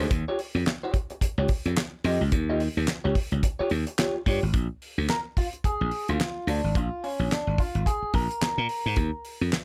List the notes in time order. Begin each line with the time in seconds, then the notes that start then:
0.00 D4 G#4 C5
0.11 D#2, muted clean electric guitar stroke, kick, closed hi-hat
0.28 F4 G4 C#5
0.39 muted clean electric guitar stroke, open hi-hat
0.55 F2, muted clean electric guitar stroke
0.66 muted clean electric guitar stroke, snare, clap, closed hi-hat
0.83 F4 G4 C#5
0.94 muted clean electric guitar stroke, kick, closed hi-hat
1.10 muted clean electric guitar stroke, closed hi-hat
1.21 muted clean electric guitar stroke, kick, closed hi-hat
1.38 C#2 F4 G4 C#5
1.48 muted clean electric guitar stroke, kick, open hi-hat
1.65 F2, muted clean electric guitar stroke, closed hi-hat
1.76 muted clean electric guitar stroke, snare, clap, closed hi-hat
2.04 F2 F4 G4 D#5, open hi-hat
2.21 C#2, muted clean electric guitar stroke
2.32 D#2, muted clean electric guitar stroke, kick, closed hi-hat
2.50 F4 G4 D#5
2.60 muted clean electric guitar stroke, open hi-hat
2.77 D#2, muted clean electric guitar stroke
2.87 muted clean electric guitar stroke, snare, clap, closed hi-hat
3.04 C#2 F4 G4 C#5
3.15 muted clean electric guitar stroke, kick, open hi-hat
3.31 C#2, muted clean electric guitar stroke, closed hi-hat
3.43 muted clean electric guitar stroke, kick, closed hi-hat
3.59 F4 G4 C#5, muted slap bass stroke
3.70 D#2, muted clean electric guitar stroke, open hi-hat
3.87 muted clean electric guitar stroke, closed hi-hat
3.98 F4 G4 C#5, snare, clap, closed hi-hat
4.15 muted clean electric guitar stroke
4.26 G2 F4 G4 C#5, kick, open hi-hat
4.42 G#1, muted clean electric guitar stroke
4.54 A#1, kick, closed hi-hat
4.82 open hi-hat
4.98 D2
5.09 A#4, snare, clap, closed hi-hat
5.37 F4, kick, open hi-hat
5.53 closed hi-hat
5.64 G#4, kick, closed hi-hat
5.81 A#1
5.91 open hi-hat
6.08 D2 F4, closed hi-hat
6.20 snare, clap, closed hi-hat
6.47 D2 D4, open hi-hat
6.64 G#1
6.75 A#1 F4, kick, closed hi-hat
7.04 C#4, open hi-hat
7.19 A#1
7.31 D4, snare, clap, closed hi-hat
7.47 G#1
7.58 F4, kick, open hi-hat
7.75 G#1, closed hi-hat
7.86 G#4, kick, closed hi-hat
8.02 muted slap bass stroke
8.14 A#1 A#4, kick, open hi-hat
8.31 closed hi-hat
8.41 muted slap bass stroke, snare, clap, closed hi-hat
8.58 A#2
8.69 open hi-hat
8.86 G#2
8.96 D#2, kick, closed hi-hat
9.25 open hi-hat
9.41 F2
9.52 snare, clap, closed hi-hat